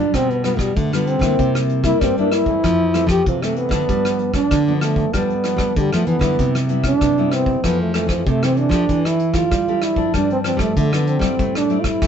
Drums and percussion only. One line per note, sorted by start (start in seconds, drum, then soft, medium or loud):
0.14 kick medium
0.14 cross-stick medium
0.14 closed hi-hat medium
0.30 closed hi-hat soft
0.44 cross-stick medium
0.44 closed hi-hat soft
0.59 kick medium
0.59 cross-stick medium
0.59 closed hi-hat soft
0.77 kick medium
0.77 closed hi-hat medium
0.93 cross-stick medium
0.93 closed hi-hat soft
1.07 closed hi-hat soft
1.21 kick medium
1.21 cross-stick medium
1.21 closed hi-hat soft
1.39 kick medium
1.39 closed hi-hat medium
1.55 cross-stick medium
1.69 closed hi-hat soft
1.84 kick medium
1.84 cross-stick medium
2.01 kick medium
2.01 cross-stick medium
2.01 closed hi-hat medium
2.18 closed hi-hat soft
2.32 cross-stick medium
2.32 closed hi-hat soft
2.46 kick medium
2.46 closed hi-hat soft
2.64 kick medium
2.64 cross-stick medium
2.64 closed hi-hat medium
2.94 cross-stick medium
2.94 closed hi-hat soft
3.09 kick medium
3.09 cross-stick medium
3.26 kick medium
3.26 closed hi-hat medium
3.42 cross-stick medium
3.42 closed hi-hat soft
3.56 closed hi-hat soft
3.71 kick medium
3.71 cross-stick medium
3.89 kick medium
3.89 closed hi-hat medium
4.05 cross-stick medium
4.19 closed hi-hat soft
4.34 kick medium
4.34 cross-stick medium
4.51 kick medium
4.51 cross-stick medium
4.51 closed hi-hat medium
4.68 closed hi-hat soft
4.81 cross-stick medium
4.81 closed hi-hat soft
4.96 kick medium
4.96 closed hi-hat soft
5.14 kick medium
5.14 cross-stick medium
5.14 closed hi-hat medium
5.30 closed hi-hat soft
5.44 cross-stick medium
5.44 closed hi-hat soft
5.58 kick medium
5.58 cross-stick medium
5.58 closed hi-hat soft
5.76 kick medium
5.76 closed hi-hat medium
5.93 cross-stick medium
5.93 closed hi-hat soft
6.07 closed hi-hat soft
6.21 kick medium
6.21 cross-stick medium
6.21 closed hi-hat soft
6.39 kick medium
6.39 closed hi-hat medium
6.55 cross-stick medium
6.69 closed hi-hat soft
6.84 kick medium
6.84 cross-stick medium
7.01 kick medium
7.01 cross-stick medium
7.01 closed hi-hat medium
7.18 closed hi-hat soft
7.32 cross-stick medium
7.32 closed hi-hat soft
7.46 kick medium
7.46 closed hi-hat soft
7.64 kick medium
7.64 cross-stick medium
7.64 closed hi-hat medium
7.94 cross-stick medium
7.94 closed hi-hat soft
8.09 kick medium
8.09 cross-stick medium
8.26 kick medium
8.26 closed hi-hat medium
8.43 cross-stick medium
8.43 closed hi-hat soft
8.57 closed hi-hat soft
8.71 kick medium
8.71 cross-stick medium
8.89 kick medium
8.89 closed hi-hat medium
9.05 cross-stick medium
9.19 closed hi-hat soft
9.34 kick medium
9.34 cross-stick medium
9.51 kick medium
9.51 cross-stick medium
9.51 closed hi-hat medium
9.68 closed hi-hat soft
9.82 cross-stick medium
9.82 closed hi-hat soft
9.96 kick medium
9.96 closed hi-hat soft
10.14 kick medium
10.14 cross-stick medium
10.14 closed hi-hat medium
10.30 closed hi-hat soft
10.44 cross-stick medium
10.44 closed hi-hat soft
10.59 kick medium
10.59 cross-stick medium
10.59 closed hi-hat soft
10.77 kick medium
10.77 closed hi-hat medium
10.93 cross-stick medium
10.93 closed hi-hat soft
11.07 closed hi-hat soft
11.21 kick medium
11.21 cross-stick medium
11.21 closed hi-hat soft
11.39 kick medium
11.39 closed hi-hat medium
11.55 cross-stick medium
11.70 closed hi-hat soft
11.84 kick medium
11.84 cross-stick medium
12.02 kick medium
12.02 cross-stick medium
12.02 closed hi-hat medium